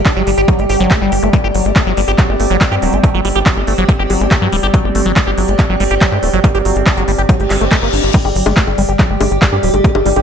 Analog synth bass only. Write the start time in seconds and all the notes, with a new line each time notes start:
0.16 G1
0.27 G1
0.38 G1
0.59 G1
0.69 G1
0.80 G1
1.01 G1
1.12 G1
1.23 G1
1.44 G1
1.55 G1
1.65 G1
1.86 G1
1.97 G1
2.08 G1
2.29 G1
2.40 G1
2.50 G1
2.72 G2
2.82 D1
2.93 G1
3.14 G1
3.25 G1
3.35 G1
3.57 G1
3.67 G1
3.78 G1
3.99 G1
4.10 G1
4.21 G1
4.42 G2
4.52 D1
4.63 G1
4.84 G1
4.95 G1
5.06 G1
5.27 G1
5.38 G1
5.48 G1
5.69 G1
5.80 G1
5.91 G1
6.12 G2
6.23 D1
6.33 G1
6.55 G1
6.65 G1
6.76 G1
6.97 G1
7.08 G1
7.18 G1
7.40 G1
7.50 G1
7.61 G1
7.82 G1
7.93 G1
8.04 G1
8.25 G1
8.35 G1
8.46 G1
8.67 G1
8.78 G1
8.89 G1
9.10 G1
9.21 G1
9.31 G1
9.52 G2
9.63 D1
9.74 G1
9.95 G1
10.06 G1
10.16 G1